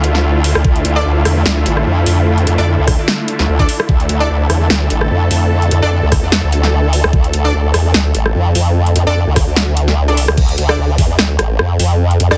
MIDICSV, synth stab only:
0, 0, Header, 1, 2, 480
1, 0, Start_track
1, 0, Key_signature, -1, "minor"
1, 0, Tempo, 405405
1, 765, Time_signature, 4, 2, 24, 8
1, 14653, End_track
2, 0, Start_track
2, 0, Title_t, "Synth stab"
2, 0, Program_c, 0, 62
2, 1136, Note_on_c, 0, 62, 100
2, 1136, Note_on_c, 0, 69, 85
2, 1136, Note_on_c, 0, 74, 108
2, 1223, Note_off_c, 0, 62, 0
2, 1223, Note_off_c, 0, 69, 0
2, 1223, Note_off_c, 0, 74, 0
2, 3056, Note_on_c, 0, 62, 97
2, 3056, Note_on_c, 0, 69, 86
2, 3056, Note_on_c, 0, 74, 105
2, 3143, Note_off_c, 0, 62, 0
2, 3143, Note_off_c, 0, 69, 0
2, 3143, Note_off_c, 0, 74, 0
2, 4256, Note_on_c, 0, 62, 74
2, 4256, Note_on_c, 0, 69, 70
2, 4256, Note_on_c, 0, 74, 84
2, 4401, Note_off_c, 0, 62, 0
2, 4401, Note_off_c, 0, 69, 0
2, 4401, Note_off_c, 0, 74, 0
2, 4976, Note_on_c, 0, 62, 96
2, 4976, Note_on_c, 0, 69, 89
2, 4976, Note_on_c, 0, 74, 105
2, 5063, Note_off_c, 0, 62, 0
2, 5063, Note_off_c, 0, 69, 0
2, 5063, Note_off_c, 0, 74, 0
2, 6896, Note_on_c, 0, 62, 96
2, 6896, Note_on_c, 0, 69, 83
2, 6896, Note_on_c, 0, 74, 103
2, 6983, Note_off_c, 0, 62, 0
2, 6983, Note_off_c, 0, 69, 0
2, 6983, Note_off_c, 0, 74, 0
2, 8816, Note_on_c, 0, 62, 95
2, 8816, Note_on_c, 0, 69, 87
2, 8816, Note_on_c, 0, 74, 108
2, 8903, Note_off_c, 0, 62, 0
2, 8903, Note_off_c, 0, 69, 0
2, 8903, Note_off_c, 0, 74, 0
2, 10735, Note_on_c, 0, 69, 87
2, 10736, Note_on_c, 0, 62, 97
2, 10736, Note_on_c, 0, 74, 107
2, 10822, Note_off_c, 0, 69, 0
2, 10823, Note_off_c, 0, 62, 0
2, 10823, Note_off_c, 0, 74, 0
2, 11936, Note_on_c, 0, 62, 76
2, 11936, Note_on_c, 0, 69, 71
2, 11936, Note_on_c, 0, 74, 78
2, 12081, Note_off_c, 0, 62, 0
2, 12081, Note_off_c, 0, 69, 0
2, 12081, Note_off_c, 0, 74, 0
2, 12656, Note_on_c, 0, 62, 96
2, 12656, Note_on_c, 0, 69, 84
2, 12656, Note_on_c, 0, 74, 103
2, 12742, Note_off_c, 0, 62, 0
2, 12743, Note_off_c, 0, 69, 0
2, 12743, Note_off_c, 0, 74, 0
2, 14576, Note_on_c, 0, 62, 97
2, 14576, Note_on_c, 0, 69, 87
2, 14576, Note_on_c, 0, 74, 105
2, 14653, Note_off_c, 0, 62, 0
2, 14653, Note_off_c, 0, 69, 0
2, 14653, Note_off_c, 0, 74, 0
2, 14653, End_track
0, 0, End_of_file